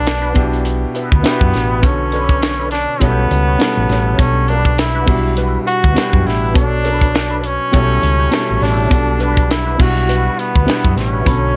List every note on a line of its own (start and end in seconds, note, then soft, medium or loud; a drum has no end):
0.00 0.32 B1 loud
0.00 0.27 B2 medium
0.00 0.27 B3 medium
0.00 0.27 D4 medium
0.00 0.68 D4 loud
0.00 0.28 F#4 medium
0.00 0.28 A4 medium
0.06 muted clean electric guitar stroke soft
0.06 snare loud
0.06 closed hi-hat loud
0.22 0.35 D4 medium
0.22 0.34 F#4 medium
0.22 0.35 B4 medium
0.34 0.84 B1 loud
0.34 1.08 B2 medium
0.34 1.08 B3 medium
0.34 1.08 D4 medium
0.34 1.08 E4 medium
0.34 1.09 F#4 medium
0.34 1.09 G4 medium
0.34 muted clean electric guitar stroke soft
0.34 kick loud
0.34 closed hi-hat medium
0.52 muted clean electric guitar stroke soft
0.52 closed hi-hat medium
0.65 muted clean electric guitar stroke soft
0.65 closed hi-hat medium
0.82 muted clean electric guitar stroke soft
0.95 1.85 B3 loud
0.95 1.12 E4 medium
0.95 1.11 F#4 medium
0.95 1.11 B4 medium
0.95 closed hi-hat medium
1.12 1.22 D2 medium
1.12 1.23 E4 soft
1.12 1.23 F#4 medium
1.12 1.24 B4 medium
1.12 kick medium
1.23 1.65 B2 medium
1.23 1.65 B3 medium
1.23 1.65 D4 medium
1.23 1.46 E4 medium
1.23 1.66 E4 medium
1.23 1.46 F#4 medium
1.23 1.66 F#4 medium
1.23 1.66 G4 medium
1.23 1.47 B4 medium
1.23 2.08 E5 medium
1.23 snare loud
1.23 closed hi-hat loud
1.41 1.51 F#2 medium
1.41 kick medium
1.54 1.84 A1 medium
1.54 muted clean electric guitar stroke soft
1.54 snare soft
1.54 closed hi-hat medium
1.70 1.85 E4 medium
1.70 1.85 F#4 medium
1.70 1.85 B4 medium
1.82 2.85 B1 loud
1.82 2.63 B2 medium
1.82 2.64 D3 medium
1.82 2.64 B3 medium
1.82 2.64 C#4 medium
1.82 2.71 C#4 loud
1.82 2.65 A4 medium
1.82 kick loud
1.82 closed hi-hat loud
2.12 2.35 D4 medium
2.12 2.35 A4 medium
2.12 2.36 B4 medium
2.12 closed hi-hat medium
2.29 kick medium
2.29 closed hi-hat medium
2.42 muted clean electric guitar stroke soft
2.42 snare loud
2.42 closed hi-hat loud
2.59 2.70 D4 medium
2.59 2.70 A4 medium
2.59 2.71 B4 medium
2.71 3.03 D4 loud
2.71 muted clean electric guitar stroke soft
2.71 snare soft
2.71 closed hi-hat medium
2.88 muted clean electric guitar stroke soft
3.00 3.26 B1 loud
3.00 3.50 B2 medium
3.00 3.50 G3 medium
3.00 4.19 B3 loud
3.00 3.50 C#4 medium
3.00 3.23 E4 medium
3.00 3.51 E4 medium
3.00 3.24 G4 medium
3.00 3.51 A4 medium
3.00 3.24 C#5 medium
3.00 kick medium
3.00 closed hi-hat medium
3.30 3.55 C#2 medium
3.30 muted clean electric guitar stroke soft
3.30 closed hi-hat medium
3.47 3.59 E4 medium
3.47 3.60 G4 medium
3.47 3.60 C#5 medium
3.59 4.01 B2 medium
3.59 4.01 G3 medium
3.59 4.01 C#4 medium
3.59 4.02 E4 medium
3.59 4.02 A4 medium
3.59 snare loud
3.59 closed hi-hat loud
3.77 3.87 A1 medium
3.89 4.14 A1 loud
3.89 4.07 E4 medium
3.89 4.06 G4 medium
3.89 4.05 C#5 medium
3.89 snare soft
3.89 closed hi-hat medium
4.07 4.22 E4 soft
4.07 4.21 G4 soft
4.07 4.21 C#5 medium
4.18 5.04 B1 medium
4.18 4.99 B2 medium
4.18 4.99 G3 medium
4.18 4.50 C#4 loud
4.18 5.00 D4 medium
4.18 5.00 F#4 medium
4.18 5.01 A4 medium
4.18 kick loud
4.18 closed hi-hat loud
4.48 4.81 D4 loud
4.48 4.71 D4 medium
4.48 4.71 F#4 medium
4.48 4.72 B4 medium
4.48 closed hi-hat medium
4.65 kick loud
4.78 5.41 E4 loud
4.78 muted clean electric guitar stroke soft
4.78 snare loud
4.78 closed hi-hat loud
4.95 5.08 D4 medium
4.95 5.07 F#4 medium
4.95 5.08 B4 medium
5.06 5.56 B1 loud
5.06 5.80 B2 medium
5.06 5.80 G3 medium
5.06 5.80 D4 medium
5.06 5.81 E4 medium
5.06 5.81 F#4 medium
5.06 muted clean electric guitar stroke soft
5.06 kick loud
5.06 open hi-hat medium
5.24 muted clean electric guitar stroke soft
5.36 5.59 E4 medium
5.36 5.59 F#4 medium
5.36 5.60 B4 medium
5.36 closed hi-hat medium
5.66 6.28 F#4 loud
5.66 muted clean electric guitar stroke soft
5.66 closed hi-hat medium
5.83 5.94 D2 medium
5.83 5.94 E4 medium
5.83 5.95 F#4 medium
5.83 5.95 B4 medium
5.83 kick loud
5.94 6.36 B2 medium
5.94 6.37 G3 medium
5.94 6.37 D4 medium
5.94 6.18 E4 medium
5.94 6.38 E4 medium
5.94 6.18 F#4 medium
5.94 6.38 G4 medium
5.94 6.18 B4 medium
5.94 snare loud
5.94 closed hi-hat loud
6.13 6.24 F#2 medium
6.13 kick loud
6.24 6.56 A1 loud
6.24 6.56 E4 loud
6.24 6.81 F#5 medium
6.24 muted clean electric guitar stroke soft
6.24 snare soft
6.24 open hi-hat soft
6.42 6.57 E4 soft
6.42 6.57 F#4 soft
6.42 6.56 B4 medium
6.54 7.57 B1 loud
6.54 7.35 B2 medium
6.54 7.35 F#3 medium
6.54 7.39 D4 loud
6.54 7.36 D4 medium
6.54 7.36 A4 medium
6.54 7.36 C#5 medium
6.54 7.99 A5 medium
6.54 kick loud
6.54 closed hi-hat loud
6.84 7.06 D4 medium
6.84 7.07 A4 medium
6.84 7.07 B4 medium
6.84 closed hi-hat medium
7.01 kick medium
7.01 closed hi-hat medium
7.14 muted clean electric guitar stroke soft
7.14 snare loud
7.14 closed hi-hat medium
7.30 7.42 D4 medium
7.30 7.43 A4 medium
7.30 7.43 B4 medium
7.39 7.48 D4 medium
7.39 muted clean electric guitar stroke soft
7.44 8.64 C#4 loud
7.44 closed hi-hat medium
7.60 muted clean electric guitar stroke soft
7.72 7.98 B1 medium
7.72 8.21 B2 medium
7.72 8.22 G3 medium
7.72 8.22 C#4 medium
7.72 7.94 E4 medium
7.72 8.23 E4 medium
7.72 7.95 G4 medium
7.72 8.23 A4 medium
7.72 7.95 C#5 medium
7.72 9.16 G5 medium
7.72 kick medium
7.72 closed hi-hat medium
8.01 8.27 C#2 medium
8.01 muted clean electric guitar stroke soft
8.01 closed hi-hat medium
8.19 8.30 E4 medium
8.19 8.31 G4 medium
8.19 8.31 C#5 medium
8.31 8.73 B2 medium
8.31 8.73 G3 medium
8.31 8.73 C#4 medium
8.31 8.74 E4 medium
8.31 8.74 A4 loud
8.31 9.16 A5 medium
8.31 muted clean electric guitar stroke soft
8.31 snare loud
8.31 closed hi-hat loud
8.50 8.60 A1 medium
8.55 9.36 C#6 medium
8.61 8.86 A1 loud
8.61 9.21 D4 loud
8.61 8.78 E4 medium
8.61 8.77 G4 medium
8.61 8.76 C#5 medium
8.61 snare soft
8.61 open hi-hat soft
8.72 9.51 E6 medium
8.77 8.93 E4 soft
8.77 8.92 G4 medium
8.77 8.92 C#5 medium
8.89 9.75 B1 loud
8.89 9.70 B2 medium
8.89 9.71 G3 medium
8.89 9.71 D4 medium
8.89 9.72 F#4 medium
8.89 9.72 A4 medium
8.89 kick loud
8.89 closed hi-hat loud
9.18 9.41 D4 medium
9.18 9.53 D4 medium
9.18 9.42 F#4 medium
9.18 9.42 B4 medium
9.18 closed hi-hat medium
9.37 kick loud
9.37 closed hi-hat medium
9.48 9.83 E4 loud
9.48 muted clean electric guitar stroke soft
9.48 snare loud
9.48 closed hi-hat medium
9.65 9.78 D4 medium
9.65 9.78 F#4 medium
9.65 9.78 B4 medium
9.78 10.27 B1 loud
9.78 10.51 B2 medium
9.78 10.51 G3 medium
9.78 10.52 D4 medium
9.78 10.52 E4 medium
9.78 10.53 F#4 medium
9.78 10.41 F#4 loud
9.78 muted clean electric guitar stroke soft
9.78 kick loud
9.78 crash medium
9.95 muted clean electric guitar stroke soft
9.95 closed hi-hat medium
10.08 10.30 E4 medium
10.08 10.31 F#4 medium
10.08 10.31 B4 medium
10.08 closed hi-hat medium
10.37 10.97 B3 loud
10.37 muted clean electric guitar stroke soft
10.37 closed hi-hat medium
10.54 10.66 D2 medium
10.54 10.65 E4 soft
10.54 10.66 F#4 medium
10.54 10.66 B4 medium
10.54 kick medium
10.66 11.08 B2 medium
10.66 11.08 G3 medium
10.66 11.09 D4 medium
10.66 10.89 E4 medium
10.66 11.09 E4 medium
10.66 10.89 F#4 medium
10.66 11.09 F#4 medium
10.66 10.90 B4 medium
10.66 snare loud
10.66 closed hi-hat loud
10.85 10.95 F#2 medium
10.85 kick medium
10.96 11.21 A1 medium
10.96 11.56 C#4 medium
10.96 muted clean electric guitar stroke soft
10.96 snare soft
10.96 closed hi-hat medium
11.13 11.28 E4 soft
11.13 11.28 F#4 medium
11.13 11.28 B4 medium
11.26 11.56 B1 loud
11.26 11.56 B2 medium
11.26 11.56 D3 medium
11.26 11.56 F#3 medium
11.26 11.56 C#4 medium
11.26 11.56 A4 medium
11.26 11.56 B5 medium
11.26 kick loud
11.26 closed hi-hat loud